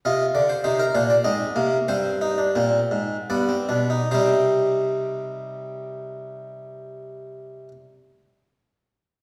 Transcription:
<<
  \new Staff \with { instrumentName = "Harpsichord" } { \time 3/4 \key c \minor \tempo 4 = 70 << { ees''8 d''16 c''16 c''16 bes'16 c''16 d''16 ees''4 | c''2 d''4 | <g c' c''>2.~ | <g c' c''>2. | } \\ { f'4 ees'8 d'8 c'8 bes8 | c'8 ees'16 d'16 c'4 b16 c'16 d'16 ees'16 | ees'2.~ | ees'2. | } >> }
  \new Staff \with { instrumentName = "Harpsichord" } { \clef bass \time 3/4 \key c \minor c8 d8 c8 bes,8 aes,8 c8 | g,4 bes,8 aes,8 g,8 b,8 | c2.~ | c2. | }
>>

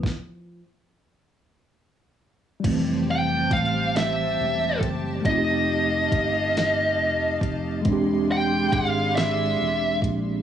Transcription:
<<
  \new Staff \with { instrumentName = "Lead electric guitar" } { \time 6/8 \key f \major \tempo 4. = 46 r2. | r8 g''8 f''8 e''4 r8 | ees''2~ ees''8 r8 | r8 g''8 f''8 e''4 r8 | }
  \new Staff \with { instrumentName = "String section" } { \time 6/8 \key f \major << { r2. | <g' a''>2.~ | <g' a''>2. | <gis bis''>2. | } \\ { r2. | <c'' g''>2. | <ees'' f''>2. | <e' d''>2. | } >> }
  \new Staff \with { instrumentName = "Tine electric piano" } { \time 6/8 \key f \major r2. | <e g a c'>2. | <a c' ees' f' g'>2. | <gis bis d' g'>2. | }
  \new Staff \with { instrumentName = "Fretless electric bass" } { \clef bass \time 6/8 \key f \major r2. | f,,4 a,,4 e,,8 ges,,8 | f,,4 g,,4 f,,8 f,,8 | e,,4 gis,,4 e,,8 bes,,8 | }
  \new DrumStaff \with { instrumentName = "Drums" } \drummode { \time 6/8 <bd sn>4. r4. | <cymc hh bd>4 <hh bd>8 <hh sn>4 <hh bd>8 | <hh bd>4 <hh bd>8 <hh sn>4 <hh bd>8 | <hh bd>4 <hh bd>8 <hh sn>4 <hh bd>8 | }
>>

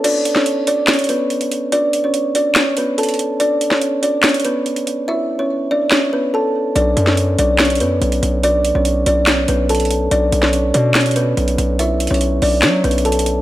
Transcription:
<<
  \new Staff \with { instrumentName = "Kalimba" } { \time 4/4 \key b \minor \tempo 4 = 143 <d' d''>8. <cis' cis''>8. <d' d''>8 <cis' cis''>8 <b b'>4. | <d' d''>8. <cis' cis''>8. <d' d''>8 <cis' cis''>8 <b b'>8 <a' a''>4 | <d' d''>8. <cis' cis''>8. <d' d''>8 <cis' cis''>8 <b b'>4. | <e' e''>8. <cis' cis''>8. <d' d''>8 <cis' cis''>8 <b b'>8 <a' a''>4 |
<d' d''>8. <cis' cis''>8. <d' d''>8 <cis' cis''>8 <b b'>4. | <d' d''>8. <cis' cis''>8. <d' d''>8 <cis' cis''>8 <b b'>8 <a' a''>4 | <d' d''>8. <cis' cis''>8. <d' d''>8 <cis' cis''>8 <b b'>4. | <e' e''>8. <cis' cis''>8. <d' d''>8 <cis' cis''>8 <b b'>8 <a' a''>4 | }
  \new Staff \with { instrumentName = "808-style bass" } { \clef bass \time 4/4 \key b \minor r1 | r1 | r1 | r1 |
b,,8 fis,4 b,,4 fis,8 b,,8 b,,8~ | b,,8. b,,8. b,,4 b,,4. | b,,8 b,,4 b,4. b,,8 b,,8~ | b,,8. b,,8. b,,8 fis8 b,,4. | }
  \new DrumStaff \with { instrumentName = "Drums" } \drummode { \time 4/4 <cymc hh>8 hh16 sn16 hh8 hh8 <hc hh sn>32 hh32 hh32 hh32 hh8 hh16 hh16 hh8 | hh8 hh8 hh8 hh8 <hc hh sn>8 hh8 hh32 hh32 hh32 hh32 hh8 | hh8 hh16 sn16 hh8 hh8 <hc hh sn>32 hh32 hh32 hh32 hh8 hh16 hh16 hh8 | r4 r4 <hc sn>4 r4 |
hh8 hh16 sn16 hh8 hh8 <hc hh sn>32 hh32 hh32 hh32 hh8 hh16 hh16 hh8 | hh8 hh8 hh8 hh8 <hc hh sn>8 hh8 hh32 hh32 hh32 hh32 hh8 | hh8 hh16 sn16 hh8 hh8 <hc hh sn>32 hh32 hh32 hh32 hh8 hh16 hh16 hh8 | \tuplet 3/2 { hh16 r16 r16 hh16 hh16 hh16 } hh8 hho8 \tuplet 3/2 { <hc hh sn>16 r16 r16 hh16 hh16 hh16 hh16 hh16 hh16 hh16 r16 r16 } | }
>>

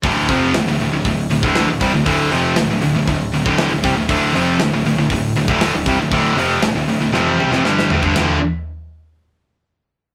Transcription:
<<
  \new Staff \with { instrumentName = "Distorted electric guitar" } { \clef bass \time 4/4 \key d \minor \tempo 4 = 118 <d, a, d>8 <f, c f>8 <d, a,>16 <d, a,>16 <d, a,>16 <d, a,>16 <d, a,>8 <d, a,>16 <d, a, d>8 <d, a,>16 <c g>16 <d, a,>16 | <d, a, d>8 <f, c f>8 <d, a,>16 <d, a,>16 <d, a,>16 <d, a,>16 <d, a,>8 <d, a,>16 <d, a, d>8 <d, a,>16 <c g>16 <d, a,>16 | <d, a, d>8 <f, c f>8 <d, a,>16 <d, a,>16 <d, a,>16 <d, a,>16 <d, a,>8 <d, a,>16 <d, a, d>8 <d, a,>16 <c g>16 <d, a,>16 | <d, a, d>8 <f, c f>8 <d, a,>16 <d, a,>16 <d, a,>16 <d, a,>16 <f, c f>8 <c g>16 <f, c>16 <g, d g>8 <d, a,>16 <g, d>16 |
<d, a, d>8 r2. r8 | }
  \new Staff \with { instrumentName = "Distorted electric guitar" } { \clef bass \time 4/4 \key d \minor <d, a, d>8 <f, c f>8 <d, a,>16 <d, a,>16 <d, a,>16 <d, a,>16 <d, a,>8 <d, a,>16 <d, a, d>8 <d, a,>16 <c g>16 <d, a,>16 | <d, a, d>8 <f, c f>8 <d, a,>16 <d, a,>16 <d, a,>16 <d, a,>16 <d, a,>8 <d, a,>16 <d, a, d>8 <d, a,>16 <c g>16 <d, a,>16 | <d, a, d>8 <f, c f>8 <d, a,>16 <d, a,>16 <d, a,>16 <d, a,>16 <d, a,>8 <d, a,>16 <d, a, d>8 <d, a,>16 <c g>16 <d, a,>16 | <d, a, d>8 <f, c f>8 <d, a,>16 <d, a,>16 <d, a,>16 <d, a,>16 <f, c f>8 <c g>16 <f, c>16 <g, d g>8 <d, a,>16 <g, d>16 |
<d, a, d>8 r2. r8 | }
  \new Staff \with { instrumentName = "Distorted electric guitar" } { \clef bass \time 4/4 \key d \minor <d, a, d>8 <f, c f>8 <d, a,>16 <d, a,>16 <d, a,>16 <d, a,>16 <d, a,>8 <d, a,>16 <d, a, d>8 <d, a,>16 <c g>16 <d, a,>16 | <d, a, d>8 <f, c f>8 <d, a,>16 <d, a,>16 <d, a,>16 <d, a,>16 <d, a,>8 <d, a,>16 <d, a, d>8 <d, a,>16 <c g>16 <d, a,>16 | <d, a, d>8 <f, c f>8 <d, a,>16 <d, a,>16 <d, a,>16 <d, a,>16 <d, a,>8 <d, a,>16 <d, a, d>8 <d, a,>16 <c g>16 <d, a,>16 | <d, a, d>8 <f, c f>8 <d, a,>16 <d, a,>16 <d, a,>16 <d, a,>16 <f, c f>8 <c g>16 <f, c>16 <g, d g>8 <d, a,>16 <g, d>16 |
<d, a, d a f'>8 r2. r8 | }
  \new Staff \with { instrumentName = "Picked electric bass" } { \clef bass \time 4/4 \key d \minor d,,8 f,,8 d,,16 d,,16 d,,16 d,,16 d,,8 d,,16 d,,8 d,,16 c,16 d,,16 | d,,8 f,,8 d,,16 d,,16 d,,16 d,,16 d,,8 d,,16 d,,8 d,,16 c,16 d,,16 | d,,8 f,,8 d,,16 d,,16 d,,16 d,,16 d,,8 d,,16 d,,8 d,,16 c,16 d,,16 | d,,8 f,,8 d,,16 d,,16 d,,16 d,,16 f,,8 c,16 f,,16 g,,8 d,,16 g,,16 |
d,,8 r2. r8 | }
  \new DrumStaff \with { instrumentName = "Drums" } \drummode { \time 4/4 <hho bd>8 <hho bd>8 <hho sn>8 hho8 <hho bd>8 hho16 bd16 <hho sn>8 <hho bd sn>8 | <hho bd>8 hho8 <hho sn>8 hho8 <hho bd>8 hho16 bd16 <hho sn>8 <hho bd sn>8 | <hho bd>8 hho8 <hho sn>8 hho8 <hho bd>8 hho16 bd16 <hho sn>8 <hho bd sn>8 | <hho bd>8 hho8 <hho sn>8 hho8 sn16 tommh16 toml16 sn16 sn16 sn16 tomfh16 bd16 |
<rb sn tomfh>4 r4 r4 r4 | }
>>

